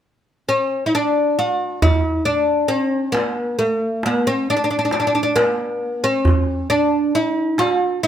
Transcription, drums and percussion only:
1.82 darbuka dum medium
3.15 darbuka tek medium
3.59 darbuka ka soft
4.03 darbuka tek medium
4.47 darbuka ka soft
4.91 darbuka tek medium
5.14 darbuka ka soft
5.37 darbuka tek medium
6.25 darbuka dum medium
7.58 darbuka tek medium
8.03 darbuka ka soft

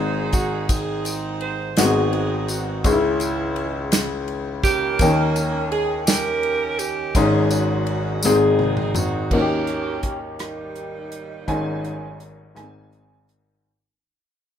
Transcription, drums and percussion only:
0.33 kick medium
0.33 ride soft
0.33 tambourine medium
0.69 kick loud
0.69 ride medium
0.69 tambourine medium
1.05 ride soft
1.05 tambourine medium
1.41 ride soft
1.77 snare loud
1.77 ride medium
1.77 tambourine medium
2.13 ride soft
2.48 ride soft
2.48 tambourine medium
2.84 kick loud
2.84 ride medium
2.84 tambourine medium
3.20 ride soft
3.20 tambourine medium
3.56 ride soft
3.92 snare loud
3.92 ride medium
3.92 tambourine medium
4.28 ride soft
4.63 kick medium
4.63 ride soft
4.63 tambourine medium
4.99 kick loud
4.99 ride medium
4.99 tambourine medium
5.36 ride soft
5.36 tambourine medium
5.72 ride soft
6.07 snare loud
6.07 ride medium
6.07 tambourine medium
6.43 ride soft
6.79 ride soft
6.79 tambourine medium
7.15 kick loud
7.15 ride medium
7.15 tambourine medium
7.51 ride soft
7.51 tambourine medium
7.87 ride soft
8.23 snare medium
8.23 tambourine medium
8.59 high tom medium
8.77 mid tom medium
8.95 mid tom loud
8.95 tambourine medium
9.31 kick medium
9.31 crash medium
9.67 closed hi-hat soft
10.03 kick medium
10.03 closed hi-hat medium
10.39 cross-stick loud
10.39 closed hi-hat medium
10.76 closed hi-hat soft
11.12 closed hi-hat medium
11.48 kick medium
11.48 closed hi-hat medium
11.85 closed hi-hat soft
12.20 closed hi-hat medium
12.56 cross-stick medium
12.56 closed hi-hat medium
12.93 closed hi-hat soft
13.29 closed hi-hat medium

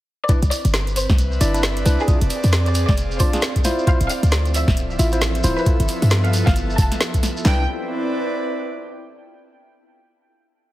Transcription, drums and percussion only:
0.29 kick loud
0.29 closed hi-hat medium
0.29 shekere medium
0.42 closed hi-hat medium
0.42 shekere soft
0.51 open hi-hat loud
0.51 shekere medium
0.65 closed hi-hat medium
0.65 shekere soft
0.74 snare loud
0.74 shekere medium
0.87 closed hi-hat soft
0.87 shekere soft
0.96 open hi-hat loud
0.96 shekere medium
1.09 kick loud
1.09 snare medium
1.09 shekere soft
1.18 closed hi-hat medium
1.18 shekere medium
1.32 shekere soft
1.41 open hi-hat loud
1.41 shekere medium
1.54 closed hi-hat medium
1.54 shekere soft
1.63 snare loud
1.63 shekere medium
1.77 closed hi-hat medium
1.77 shekere soft
1.86 snare soft
1.86 open hi-hat loud
1.86 shekere medium
2.00 shekere soft
2.08 kick loud
2.08 closed hi-hat medium
2.08 shekere medium
2.21 closed hi-hat medium
2.21 shekere soft
2.30 open hi-hat loud
2.30 shekere medium
2.43 open hi-hat medium
2.43 shekere soft
2.52 snare loud
2.52 shekere medium
2.66 closed hi-hat soft
2.66 shekere soft
2.74 open hi-hat loud
2.74 shekere loud
2.88 kick loud
2.88 snare medium
2.88 shekere soft
2.97 closed hi-hat medium
2.97 shekere medium
3.11 shekere soft
3.19 kick loud
3.19 open hi-hat loud
3.19 shekere medium
3.33 snare soft
3.33 closed hi-hat medium
3.33 shekere soft
3.41 snare loud
3.41 shekere soft
3.56 kick medium
3.56 closed hi-hat medium
3.56 shekere soft
3.64 snare soft
3.64 open hi-hat loud
3.64 shekere loud
3.79 shekere soft
3.87 kick loud
3.87 closed hi-hat medium
3.87 shekere medium
4.00 closed hi-hat medium
4.00 shekere soft
4.09 open hi-hat loud
4.09 shekere loud
4.23 closed hi-hat medium
4.23 shekere soft
4.31 snare loud
4.31 shekere medium
4.45 closed hi-hat soft
4.45 shekere soft
4.54 open hi-hat loud
4.54 shekere medium
4.68 kick loud
4.68 snare medium
4.68 shekere soft
4.77 closed hi-hat medium
4.77 shekere medium
4.90 shekere soft
4.99 open hi-hat loud
4.99 shekere loud
5.12 closed hi-hat medium
5.12 shekere soft
5.21 snare loud
5.21 shekere medium
5.35 closed hi-hat medium
5.35 shekere soft
5.44 snare soft
5.44 open hi-hat loud
5.44 shekere medium
5.57 shekere soft
5.66 kick loud
5.66 closed hi-hat medium
5.66 shekere medium
5.80 closed hi-hat medium
5.80 shekere soft
5.88 open hi-hat medium
5.88 shekere medium
6.02 open hi-hat medium
6.02 shekere soft
6.10 snare loud
6.10 shekere medium
6.25 closed hi-hat soft
6.25 shekere soft
6.33 open hi-hat loud
6.33 shekere loud
6.47 kick loud
6.47 snare medium
6.47 shekere soft
6.56 closed hi-hat medium
6.56 shekere medium
6.70 shekere soft
6.78 kick loud
6.78 open hi-hat loud
6.78 shekere medium
6.92 snare soft
6.92 closed hi-hat medium
6.92 shekere soft
7.01 snare loud
7.01 shekere medium
7.14 kick medium
7.14 closed hi-hat medium
7.14 shekere soft
7.23 snare soft
7.23 open hi-hat loud
7.23 shekere medium
7.37 shekere soft
7.45 snare loud
7.45 clap medium

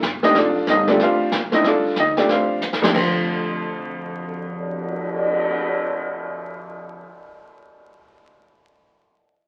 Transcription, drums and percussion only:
0.02 kick soft
0.02 snare medium
0.02 hi-hat pedal medium
0.23 snare soft
0.35 brush sweep soft
0.35 kick soft
0.35 snare soft
0.67 kick soft
0.67 snare soft
0.67 hi-hat pedal medium
0.87 snare soft
0.99 brush sweep soft
0.99 kick soft
0.99 snare soft
1.32 kick soft
1.32 snare medium
1.32 hi-hat pedal medium
1.52 snare soft
1.64 brush sweep soft
1.64 kick soft
1.64 snare soft
1.96 kick soft
1.96 snare soft
1.96 hi-hat pedal soft
2.17 snare medium
2.29 brush sweep soft
2.29 kick soft
2.29 snare soft
2.62 hi-hat pedal medium
2.73 snare medium
2.83 snare medium
2.94 kick medium
2.94 crash medium
3.15 cymbal swell soft

